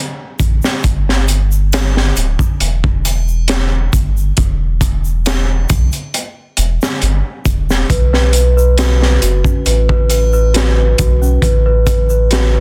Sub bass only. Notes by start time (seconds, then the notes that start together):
0.40 A1
0.84 G1
2.16 D1
2.61 E1
3.93 G1
4.38 E1
5.70 B1
6.58 E1
7.02 G1
7.46 E1
7.90 B1
9.22 F#1
9.66 A1
10.99 B1
11.42 A1